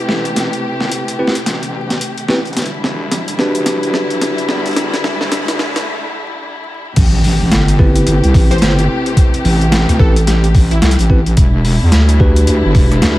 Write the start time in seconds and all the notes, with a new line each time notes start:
Already playing: C3 A3 C4 E4 G4 B4, riser
0.09 A1, cross-stick, snare
0.25 closed hi-hat
0.36 snare, closed hi-hat
0.53 closed hi-hat
0.80 G1, snare
0.91 closed hi-hat
1.08 closed hi-hat
1.19 C4 E4 G4 B4
1.27 snare
1.35 closed hi-hat
1.46 A1, snare, closed hi-hat
1.63 closed hi-hat
1.90 snare, closed hi-hat
2.01 closed hi-hat
2.18 closed hi-hat
2.29 A1 C4 E4 G4 B4, snare
2.45 closed hi-hat
2.47 closed hi-hat
2.53 E1 D3, snare, closed hi-hat
2.57 G3 E4, closed hi-hat
2.62 closed hi-hat
2.66 closed hi-hat
2.73 E1
2.84 snare
3.11 snare, closed hi-hat
3.28 closed hi-hat
3.39 D4 F#4 G4 B4, snare
3.55 E1, closed hi-hat
3.66 snare, closed hi-hat
3.83 closed hi-hat
3.94 snare
4.10 closed hi-hat
4.22 snare, closed hi-hat
4.38 closed hi-hat
4.49 E2, snare
4.66 closed hi-hat
4.67 closed hi-hat
4.71 closed hi-hat
4.73 closed hi-hat
4.75 snare, closed hi-hat
4.76 closed hi-hat
4.93 snare, closed hi-hat
5.04 snare
5.21 D2, snare
5.32 E1, snare, closed hi-hat
5.48 E1, snare, closed hi-hat
5.59 snare
5.76 snare, closed hi-hat
6.96 A1 C3 A3 G4, kick, closed hi-hat, crash, impact
7.24 open hi-hat
7.41 A1
7.52 G1, snare, closed hi-hat
7.68 closed hi-hat
7.79 C4 E4 G4 B4, kick
7.96 closed hi-hat
8.07 G1, closed hi-hat
8.23 C2, closed hi-hat
8.34 A1, kick, cross-stick, open hi-hat
8.51 C5, cross-stick, closed hi-hat
8.58 G1 C5, snare, closed hi-hat
8.62 closed hi-hat
8.79 closed hi-hat
9.06 closed hi-hat
9.17 kick, closed hi-hat
9.34 closed hi-hat
9.45 A1, open hi-hat
9.61 closed hi-hat
9.72 snare, closed hi-hat
9.88 D2, cross-stick, closed hi-hat
9.99 A1 C4 E4 G4 A4 B4, kick
10.16 closed hi-hat
10.27 G4, snare, closed hi-hat
10.44 closed hi-hat
10.55 kick, open hi-hat
10.71 E4, closed hi-hat
10.82 C2 E4, snare, closed hi-hat
10.91 closed hi-hat
10.98 A1, closed hi-hat
11.01 closed hi-hat
11.10 C4 E4 G4 B4, kick
11.26 closed hi-hat
11.37 E1 D3 G3 E4, kick, closed hi-hat
11.65 open hi-hat
11.82 E2
11.92 D2, snare, closed hi-hat
12.09 closed hi-hat
12.20 D4 F#4 G4 B4, kick
12.36 closed hi-hat
12.47 D2, closed hi-hat
12.65 G1
12.75 E1, kick, cross-stick, open hi-hat
12.92 cross-stick, closed hi-hat
13.02 D2, snare, closed hi-hat